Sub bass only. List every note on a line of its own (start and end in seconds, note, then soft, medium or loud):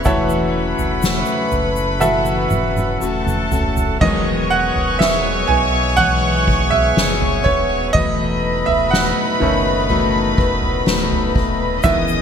0.06 0.75 E1 loud
0.79 1.24 E1 medium
1.52 2.48 F#1 medium
2.52 2.98 E1 loud
3.02 3.49 D#1 loud
3.52 3.98 D#1 loud
4.01 4.71 E1 loud
4.76 5.45 E1 loud
5.50 6.93 B1 medium
6.97 7.42 F#1 loud
7.46 7.91 D#1 medium
7.95 8.64 E1 loud
8.68 9.14 E1 loud
9.41 10.34 F#1 loud
10.38 10.83 E1 loud
10.87 11.32 D#1 loud
11.36 11.81 D#1 loud
11.84 12.22 E1 loud